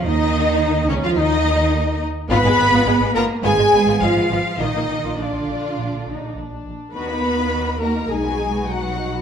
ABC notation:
X:1
M:4/4
L:1/16
Q:1/4=104
K:Bbphr
V:1 name="Violin section"
e6 d f e6 z2 | c'6 b2 a4 f4 | e4 =d8 z4 | c'6 b2 a4 ^f4 |]
V:2 name="Viola section"
E6 D F E6 z2 | c6 B2 A4 F4 | E4 =D8 z4 | c6 B2 A4 ^F4 |]
V:3 name="Violin section"
E6 D F E6 z2 | [CF] A, [A,C] [CF] A, [A,C] [CF] z [CF] A, [A,C] [CF] A, [A,C] [CF] z | [B,F] B, [B,=D] [B,F] F6 E2 D4 | [EG] [B,E] [EG] [B,E] [EG] [B,E] [EG] [B,E] ^D [=B,^F] D [B,F] D [B,F] D [B,F] |]
V:4 name="Cello section" clef=bass
E,6 D, F, E,6 z2 | C6 B,2 A,4 F,4 | E,4 =D,8 z4 | C6 B,2 A,4 ^F,4 |]
V:5 name="Double bass section" clef=bass
E,,6 D,, F,, E,,6 z2 | A,,, A,,, A,,, A,,, A,,, A,,, A,,, z A,,, A,,, A,,, A,,, A,,, A,,, A,,, z | B,,, B,,, B,,, B,,, B,,, B,,, B,,, z B,,, B,,, B,,, B,,, B,,, B,,, B,,, z | E,,8 =B,,,8 |]